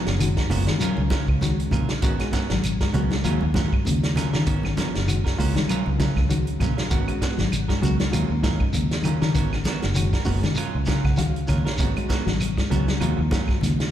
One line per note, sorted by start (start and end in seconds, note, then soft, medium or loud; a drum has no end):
0.00 0.14 F3 medium
0.00 0.10 C#4 medium
0.00 0.10 F#4 medium
0.00 0.10 A#4 medium
0.06 0.36 F#1 medium
0.06 snare medium
0.06 closed hi-hat soft
0.20 0.44 D#3 medium
0.20 0.40 G#3 medium
0.20 0.39 C#4 medium
0.20 0.39 F#4 medium
0.20 closed hi-hat medium
0.20 claves medium
0.20 shekere medium
0.37 0.49 C#4 soft
0.37 0.50 F#4 medium
0.37 0.50 A#4 medium
0.37 kick medium
0.37 snare medium
0.37 closed hi-hat soft
0.50 0.67 F#1 medium
0.50 0.81 G#3 medium
0.50 0.70 B3 medium
0.50 0.81 C#4 medium
0.50 0.70 C#4 medium
0.50 0.81 F4 medium
0.50 0.71 F#4 medium
0.50 0.71 A#4 medium
0.50 open hi-hat medium
0.50 low conga medium
0.50 shekere soft
0.67 0.78 D#3 medium
0.67 snare medium
0.67 closed hi-hat soft
0.67 high conga medium
0.80 1.05 F#3 medium
0.80 1.01 C#4 medium
0.80 1.01 F4 medium
0.80 1.01 A#4 medium
0.80 muted fingered electric bass stroke soft
0.80 muted clean electric guitar stroke medium
0.80 closed hi-hat medium
0.80 claves medium
0.80 shekere medium
0.97 1.11 C#2 medium
0.97 high conga medium
1.10 1.35 C#3 medium
1.10 1.31 F#3 medium
1.10 1.31 C#4 medium
1.10 1.31 F4 medium
1.10 1.31 A#4 medium
1.10 kick medium
1.10 snare medium
1.10 closed hi-hat medium
1.10 high conga medium
1.10 shekere soft
1.28 1.70 C#2 medium
1.28 kick medium
1.28 claves medium
1.41 1.67 D#3 medium
1.41 1.77 G#3 medium
1.41 1.77 C#4 medium
1.41 1.77 F#4 medium
1.41 snare soft
1.41 closed hi-hat medium
1.41 high conga medium
1.41 shekere medium
1.60 closed hi-hat soft
1.71 1.89 A#1 medium
1.71 1.97 C#3 medium
1.71 1.92 F#3 medium
1.71 1.92 C#4 medium
1.71 1.92 F4 medium
1.71 1.92 A#4 medium
1.71 kick medium
1.71 closed hi-hat soft
1.71 high conga medium
1.71 low conga medium
1.71 claves medium
1.71 shekere soft
1.89 snare medium
1.89 closed hi-hat soft
2.02 2.19 G#1 medium
2.02 2.12 G#3 medium
2.02 2.22 B3 medium
2.02 2.12 C#4 medium
2.02 2.23 C#4 medium
2.02 2.12 F#4 loud
2.02 2.23 F#4 medium
2.02 2.22 A#4 medium
2.02 kick medium
2.02 closed hi-hat medium
2.02 shekere medium
2.19 2.61 G#3 medium
2.19 2.61 C#4 medium
2.19 2.61 F#4 medium
2.19 snare soft
2.19 closed hi-hat soft
2.19 claves medium
2.32 2.52 B3 medium
2.32 2.53 C#4 medium
2.32 2.53 F#4 medium
2.32 2.53 A#4 medium
2.32 muted fingered electric bass stroke soft
2.32 kick medium
2.32 snare medium
2.32 closed hi-hat medium
2.32 high conga medium
2.32 shekere soft
2.50 2.79 G#1 medium
2.50 2.75 F#3 medium
2.50 snare medium
2.50 closed hi-hat soft
2.63 closed hi-hat medium
2.63 claves medium
2.63 shekere medium
2.81 2.92 G#3 medium
2.81 2.93 C#4 soft
2.81 2.93 F#4 medium
2.81 2.93 A#4 medium
2.81 kick medium
2.81 snare medium
2.81 closed hi-hat soft
2.93 3.23 C#2 medium
2.93 3.19 F#3 medium
2.93 3.14 G#3 medium
2.93 3.13 B3 medium
2.93 3.14 C#4 medium
2.93 3.13 C#4 medium
2.93 3.14 F#4 medium
2.93 3.13 F#4 loud
2.93 3.14 A#4 medium
2.93 closed hi-hat soft
2.93 low conga medium
2.93 shekere soft
3.10 snare medium
3.10 closed hi-hat soft
3.10 high conga medium
3.24 3.41 D#2 loud
3.24 3.49 F3 medium
3.24 3.44 F#3 medium
3.24 3.44 G#3 medium
3.24 3.44 C#4 medium
3.24 3.44 F4 medium
3.24 3.44 F#4 medium
3.24 3.44 A#4 medium
3.24 closed hi-hat medium
3.24 claves medium
3.24 shekere medium
3.41 3.71 D#2 medium
3.41 high conga medium
3.54 3.75 F#3 medium
3.54 4.25 G#3 medium
3.54 4.25 C#4 medium
3.54 3.75 C#4 medium
3.54 3.75 F4 medium
3.54 4.25 F#4 medium
3.54 3.75 A#4 medium
3.54 muted clean electric guitar stroke medium
3.54 kick medium
3.54 snare medium
3.54 closed hi-hat medium
3.54 high conga medium
3.54 low conga medium
3.54 shekere soft
3.73 kick medium
3.73 claves medium
3.85 4.31 D#2 medium
3.85 4.11 C#3 medium
3.85 closed hi-hat medium
3.85 high conga medium
3.85 shekere medium
4.03 snare medium
4.03 closed hi-hat soft
4.16 4.31 C#3 medium
4.16 4.33 F#3 medium
4.16 4.33 C#4 medium
4.16 4.33 F4 medium
4.16 4.32 A#4 medium
4.16 snare soft
4.16 closed hi-hat medium
4.16 low conga medium
4.16 claves medium
4.16 shekere soft
4.33 4.44 C#3 medium
4.33 4.47 D#3 medium
4.33 4.46 C#4 soft
4.33 4.47 F4 soft
4.33 4.47 A#4 medium
4.33 snare medium
4.46 4.76 G#1 loud
4.46 4.71 D#3 medium
4.46 4.67 B3 medium
4.46 4.67 C#4 medium
4.46 4.67 F#4 medium
4.46 4.67 A#4 medium
4.46 kick medium
4.46 closed hi-hat medium
4.46 low conga medium
4.46 shekere medium
4.63 snare soft
4.63 high conga medium
4.63 claves medium
4.77 5.02 F3 medium
4.77 4.97 B3 medium
4.77 4.97 C#4 medium
4.77 4.97 F#4 medium
4.77 4.97 A#4 medium
4.77 snare medium
4.77 closed hi-hat medium
4.77 high conga medium
4.77 shekere soft
4.95 5.24 F#1 medium
4.95 snare medium
4.95 closed hi-hat soft
5.08 5.32 D#3 medium
5.08 5.27 G#3 medium
5.08 5.27 C#4 medium
5.08 5.27 F#4 medium
5.08 closed hi-hat medium
5.08 claves medium
5.08 shekere medium
5.25 5.38 C#4 soft
5.25 5.38 F#4 soft
5.25 5.38 A#4 medium
5.25 kick medium
5.25 snare medium
5.25 closed hi-hat soft
5.38 5.55 C#2 medium
5.38 5.69 G#3 medium
5.38 5.58 B3 medium
5.38 5.69 C#4 medium
5.38 5.58 C#4 medium
5.38 5.69 F4 loud
5.38 5.58 F#4 medium
5.38 5.59 A#4 medium
5.38 open hi-hat medium
5.38 low conga medium
5.38 shekere soft
5.55 5.66 D#3 medium
5.55 snare medium
5.55 closed hi-hat soft
5.55 high conga medium
5.68 5.93 F#3 medium
5.68 5.89 F#3 medium
5.68 5.89 C#4 medium
5.68 5.89 F4 medium
5.68 5.89 A#4 medium
5.68 muted fingered electric bass stroke soft
5.68 closed hi-hat medium
5.68 claves medium
5.68 shekere medium
5.86 5.99 C#2 medium
5.86 high conga medium
5.99 6.23 C#3 medium
5.99 6.19 F#3 medium
5.99 6.19 C#4 medium
5.99 6.20 F4 medium
5.99 6.20 A#4 medium
5.99 kick medium
5.99 snare medium
5.99 closed hi-hat medium
5.99 high conga medium
5.99 low conga medium
5.99 shekere soft
6.16 6.58 C#2 medium
6.16 kick medium
6.16 snare soft
6.16 claves medium
6.29 6.54 D#3 medium
6.29 6.65 G#3 medium
6.29 6.65 C#4 medium
6.29 6.65 F#4 medium
6.29 closed hi-hat medium
6.29 high conga medium
6.29 shekere medium
6.47 closed hi-hat soft
6.59 6.76 A#1 medium
6.59 6.84 C#3 medium
6.59 6.77 F#3 medium
6.59 6.77 C#4 medium
6.59 6.76 F4 medium
6.59 6.76 A#4 medium
6.59 kick medium
6.59 snare soft
6.59 closed hi-hat soft
6.59 high conga medium
6.59 low conga medium
6.59 claves medium
6.59 shekere soft
6.77 6.90 C#4 soft
6.77 6.91 F4 soft
6.77 6.90 A#4 soft
6.77 snare medium
6.77 closed hi-hat soft
6.91 7.07 G#1 medium
6.91 7.00 G#3 medium
6.91 7.10 B3 medium
6.91 7.10 C#4 medium
6.91 7.00 C#4 medium
6.91 7.00 F#4 loud
6.91 7.11 F#4 medium
6.91 7.11 A#4 medium
6.91 kick medium
6.91 closed hi-hat medium
6.91 low conga medium
6.91 shekere medium
7.07 7.49 G#3 medium
7.07 7.49 C#4 medium
7.07 7.49 F#4 medium
7.07 closed hi-hat soft
7.07 claves medium
7.21 7.41 B3 medium
7.21 7.41 F#4 medium
7.21 muted clean electric guitar stroke medium
7.21 muted fingered electric bass stroke soft
7.21 kick medium
7.21 snare medium
7.21 closed hi-hat medium
7.21 high conga medium
7.21 shekere soft
7.37 7.68 G#1 medium
7.37 7.62 F#3 medium
7.37 snare medium
7.37 closed hi-hat soft
7.52 closed hi-hat medium
7.52 claves medium
7.52 shekere medium
7.68 7.80 G#3 medium
7.68 7.83 C#4 soft
7.68 7.81 F#4 soft
7.68 7.82 A#4 medium
7.68 kick medium
7.68 snare medium
7.68 closed hi-hat soft
7.81 8.11 C#2 medium
7.81 8.06 F#3 medium
7.81 8.01 G#3 medium
7.81 8.01 B3 medium
7.81 8.01 C#4 medium
7.81 8.01 F#4 loud
7.81 8.02 F#4 medium
7.81 8.02 A#4 medium
7.81 closed hi-hat medium
7.81 low conga medium
7.81 shekere soft
8.00 snare medium
8.00 closed hi-hat soft
8.00 high conga medium
8.12 8.29 D#2 medium
8.12 8.36 F3 medium
8.12 8.32 F#3 medium
8.12 8.31 G#3 medium
8.12 8.31 C#4 medium
8.12 8.32 C#4 medium
8.12 8.33 F4 medium
8.12 8.31 F#4 medium
8.12 8.33 A#4 medium
8.12 closed hi-hat medium
8.12 claves medium
8.12 shekere medium
8.30 8.59 D#2 medium
8.43 8.67 D#3 medium
8.43 8.63 F#3 medium
8.43 9.13 G#3 medium
8.43 9.13 C#4 medium
8.43 8.63 C#4 medium
8.43 9.13 D#4 medium
8.43 8.63 F4 medium
8.43 8.63 A#4 medium
8.43 kick medium
8.43 snare medium
8.43 closed hi-hat soft
8.43 high conga medium
8.43 shekere soft
8.60 kick medium
8.60 claves medium
8.73 9.19 D#2 medium
8.73 8.97 C#3 medium
8.73 closed hi-hat medium
8.73 high conga medium
8.73 shekere medium
8.91 snare medium
8.91 closed hi-hat soft
9.03 9.17 D#3 medium
9.03 9.21 F#3 medium
9.03 9.21 C#4 medium
9.03 9.21 F4 medium
9.03 9.21 A#4 medium
9.03 closed hi-hat medium
9.03 high conga medium
9.03 low conga medium
9.03 claves medium
9.03 shekere soft
9.21 9.32 C#3 medium
9.21 9.34 D#3 medium
9.21 9.34 C#4 soft
9.21 9.34 F4 soft
9.21 9.34 A#4 medium
9.21 snare medium
9.33 9.64 G#1 loud
9.33 9.58 D#3 medium
9.33 9.54 B3 medium
9.33 9.54 C#4 medium
9.33 9.54 F#4 medium
9.33 9.55 A#4 medium
9.33 kick medium
9.33 closed hi-hat medium
9.33 shekere medium
9.53 snare soft
9.53 claves medium
9.65 9.85 B3 medium
9.65 9.85 C#4 medium
9.65 9.85 F#4 medium
9.65 9.86 A#4 medium
9.65 muted clean electric guitar stroke medium
9.65 snare medium
9.65 closed hi-hat medium
9.65 high conga medium
9.65 shekere soft
9.82 10.12 F#1 medium
9.82 snare medium
9.82 closed hi-hat soft
9.95 10.20 D#3 medium
9.95 10.14 G#3 medium
9.95 10.14 C#4 medium
9.95 10.14 F#4 medium
9.95 closed hi-hat medium
9.95 claves medium
9.95 shekere medium
10.13 10.24 C#4 soft
10.13 10.25 F#4 soft
10.13 10.25 A#4 medium
10.13 kick medium
10.13 snare medium
10.13 closed hi-hat soft
10.25 10.43 F#1 medium
10.25 10.56 G#3 medium
10.25 10.45 B3 medium
10.25 10.56 C#4 medium
10.25 10.45 C#4 medium
10.25 10.56 F#4 loud
10.25 10.46 F#4 medium
10.25 10.46 A#4 medium
10.25 open hi-hat medium
10.25 low conga medium
10.25 shekere soft
10.43 10.54 D#3 medium
10.43 snare medium
10.43 closed hi-hat soft
10.43 high conga medium
10.55 10.76 F#3 medium
10.55 10.77 C#4 medium
10.55 10.77 F4 medium
10.55 10.77 A#4 medium
10.55 muted clean electric guitar stroke medium
10.55 muted fingered electric bass stroke soft
10.55 closed hi-hat medium
10.55 claves medium
10.55 shekere medium
10.75 10.87 C#2 medium
10.86 11.11 C#3 medium
10.86 11.07 F#3 medium
10.86 11.07 C#4 medium
10.86 11.07 F4 medium
10.86 11.07 A#4 medium
10.86 11.03 F5 medium
10.86 kick medium
10.86 snare medium
10.86 closed hi-hat medium
10.86 high conga medium
10.86 low conga medium
10.86 shekere soft
11.05 11.46 C#2 medium
11.05 11.17 F#5 medium
11.05 kick medium
11.05 snare soft
11.05 claves medium
11.17 11.42 D#3 medium
11.17 11.52 G#3 medium
11.17 11.52 C#4 medium
11.17 11.53 F#4 medium
11.17 11.46 F5 medium
11.17 snare soft
11.17 closed hi-hat medium
11.17 high conga medium
11.17 shekere medium
11.36 closed hi-hat soft
11.47 11.65 D#2 medium
11.47 11.72 C#3 medium
11.47 11.65 F#3 medium
11.47 11.65 C#4 medium
11.47 11.65 F4 medium
11.47 11.64 A#4 medium
11.47 11.77 C#5 medium
11.47 kick medium
11.47 snare soft
11.47 closed hi-hat medium
11.47 low conga medium
11.47 claves medium
11.47 shekere soft
11.65 11.78 C#4 soft
11.65 11.79 F4 soft
11.65 11.78 A#4 medium
11.65 snare medium
11.65 closed hi-hat soft
11.78 11.95 G#1 loud
11.78 11.89 G#3 medium
11.78 11.98 B3 medium
11.78 11.98 C#4 medium
11.78 11.89 C#4 medium
11.78 11.98 F#4 medium
11.78 11.89 F#4 medium
11.78 11.99 A#4 medium
11.78 kick medium
11.78 closed hi-hat medium
11.78 low conga medium
11.78 shekere medium
11.97 12.38 G#3 medium
11.97 12.38 C#4 medium
11.97 12.38 F#4 medium
11.97 closed hi-hat soft
11.97 high conga medium
11.97 claves medium
12.09 12.28 B3 medium
12.09 12.29 C#4 medium
12.09 12.29 F#4 medium
12.09 12.29 A#4 medium
12.09 muted fingered electric bass stroke soft
12.09 kick medium
12.09 snare medium
12.09 closed hi-hat soft
12.09 high conga medium
12.09 shekere soft
12.26 12.55 G#1 medium
12.26 12.50 F#3 medium
12.26 snare medium
12.26 closed hi-hat soft
12.40 closed hi-hat medium
12.40 high conga medium
12.40 claves medium
12.40 shekere medium
12.57 12.68 G#3 medium
12.57 kick medium
12.57 snare medium
12.57 closed hi-hat soft
12.70 12.99 C#2 medium
12.70 12.94 F#3 medium
12.70 12.89 G#3 medium
12.70 12.89 B3 medium
12.70 12.89 C#4 medium
12.70 12.90 C#4 medium
12.70 12.90 F#4 medium
12.70 12.89 F#4 medium
12.70 12.90 A#4 medium
12.70 closed hi-hat soft
12.70 low conga medium
12.70 shekere soft
12.88 snare medium
12.88 closed hi-hat soft
12.88 high conga medium
13.00 13.17 D#2 medium
13.00 13.25 F3 medium
13.00 13.20 F#3 medium
13.00 13.20 G#3 medium
13.00 13.20 C#4 medium
13.00 13.20 F4 medium
13.00 13.20 F#4 medium
13.00 13.20 A#4 medium
13.00 closed hi-hat medium
13.00 claves medium
13.00 shekere medium
13.19 13.47 D#2 medium
13.31 13.55 D#3 medium
13.31 13.50 F#3 medium
13.31 13.91 G#3 medium
13.31 13.51 C#4 medium
13.31 13.91 C#4 medium
13.31 13.51 F4 medium
13.31 13.91 F#4 medium
13.31 13.51 A#4 medium
13.31 kick medium
13.31 snare medium
13.31 closed hi-hat medium
13.31 high conga medium
13.31 shekere soft
13.48 kick medium
13.48 snare soft
13.48 claves medium
13.61 13.91 D#2 medium
13.61 13.86 C#3 medium
13.61 snare soft
13.61 closed hi-hat medium
13.61 high conga medium
13.61 shekere medium
13.80 snare medium
13.80 closed hi-hat soft